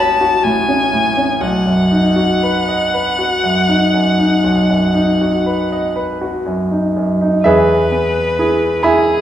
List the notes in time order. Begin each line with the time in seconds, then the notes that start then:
Already playing: A1 A2 C#4 F#4
0.00 C#5 A5
0.21 F#4
0.44 A2 G#5
0.68 C#4
0.93 A2
1.17 C#4
1.41 B1 F#5
1.66 F#2
1.91 D#4
2.16 F#4
2.43 B4
2.68 D#5
2.94 B4
3.19 F#4
3.44 F#2
3.69 D#4
3.94 F#2
4.18 D#4
4.44 B1
4.70 F#2
4.95 D#4
5.21 F#4
5.46 B4
5.72 D#5
5.96 B4
6.21 F#4
6.46 F#2
6.71 D#4
6.97 F#2
7.21 D#4
7.44 E2 G#4 B4 E5
7.92 B3
8.39 E4 G#4
8.83 E4 G#4 E5 G#5 B5